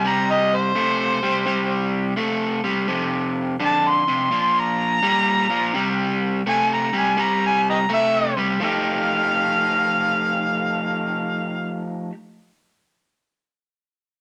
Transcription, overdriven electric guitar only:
0.05 C3 G3
0.75 C3 A3
1.23 C3 G3
1.46 C3 G3
2.16 C3 A3
2.64 C3 G3
2.88 F2 C3
3.60 F2 D3
4.08 F2 C3
4.31 A#2 F3
5.02 A#2 G3
5.49 A#2 F3
5.74 C3 G3
6.47 C3 A3
6.93 C3 G3
7.17 C3 G3
7.89 C3 A3
8.37 C3 G3
8.60 F3 A3 D#4
8.64 G4

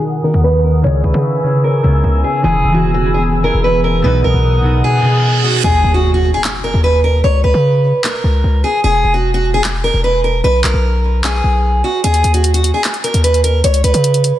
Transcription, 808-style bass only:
0.34 D#2
0.84 C#2
1.04 C#2
1.14 C#3
1.84 C#2
2.04 C#2
2.44 E1
2.64 E1
3.54 E1
4.04 B1
4.24 B1
4.34 B1
5.64 D#2
5.84 D#2
6.74 D#2
7.24 C#2
7.44 C#2
7.54 C#3
8.24 C#2
8.44 C#2
8.84 E1
9.04 E1
9.94 E1
10.44 B1
10.64 B1
10.74 B1
11.44 B1
12.04 D#2
12.24 D#2
13.14 D#2
13.64 C#2
13.84 C#2
13.94 C#3

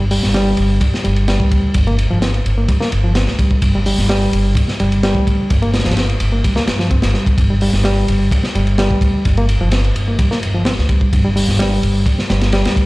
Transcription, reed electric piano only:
0.11 G3
0.34 G3
1.04 G3
1.28 G3
1.87 A#3
2.11 F3
2.22 C4
2.57 A#3
2.69 G3
2.81 A#3
3.04 F3
3.15 C4
3.39 G3
3.75 G3
3.86 G3
4.10 G3
4.80 G3
5.03 G3
5.62 A#3
5.86 F3
5.97 C4
6.32 A#3
6.44 G3
6.56 A#3
6.79 F3
6.91 C4
7.14 G3
7.50 G3
7.62 G3
7.85 G3
8.55 G3
8.79 G3
9.38 A#3
9.61 F3
9.72 C4
10.08 A#3
10.19 G3
10.31 A#3
10.55 F3
10.66 C4
10.89 G3
11.25 G3
11.36 G3
11.59 G3
12.30 G3
12.53 G3

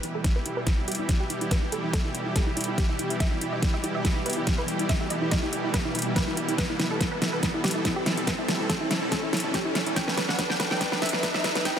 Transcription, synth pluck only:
0.04 E4
0.15 A4
0.25 E4
0.36 B4
0.46 E4
0.57 B4
0.67 E4
0.78 E4
0.88 G4
0.99 E4
1.09 E4
1.20 G4
1.30 E4
1.41 E4
1.51 B4
1.63 E4
1.72 A4
1.84 E4
1.94 A4
2.05 E4
2.15 E4
2.26 E4
2.36 A4
2.47 E4
2.57 E4
2.68 E4
2.78 G4
2.89 E4
2.99 E4
3.11 E4
3.20 E5
3.32 E4
3.41 E4
3.53 D#5
3.62 E4
3.74 E5
3.84 E4
3.95 E5
4.05 E4
4.16 E4
4.26 B4
4.37 E4
4.47 E4
4.58 B4
4.68 E4
4.80 E4
4.89 E5
5.01 E4
5.10 D#5
5.22 E4
5.32 D#5
5.43 E4
5.53 E4
5.64 E4
5.74 B4
5.85 E4
5.95 E4
6.06 E4
6.16 B4
6.27 E4
6.37 E4
6.48 E4
6.58 B4
6.70 E4
6.79 E4
6.91 A4
7.01 E4
7.12 B4
7.22 E4
7.33 B4
7.43 E4
7.54 E4
7.64 G4
7.75 E4
7.85 E4
7.96 G4
8.06 E4
8.17 E4
8.27 B4
8.38 E4
8.48 A4
8.60 E4
8.69 A4
8.81 E4
8.91 E4
9.02 E4
9.12 A4
9.23 E4
9.33 E4
9.44 E4
9.54 G4
9.65 E4
9.75 E4
9.86 E4
9.96 G5
10.08 B4
10.17 B4
10.29 F#5
10.39 B4
10.50 G5
10.60 B4
10.71 G5
10.81 B4
10.92 B4
11.02 E5
11.13 B4
11.23 B4
11.34 E5
11.44 B4
11.56 B4
11.65 G5

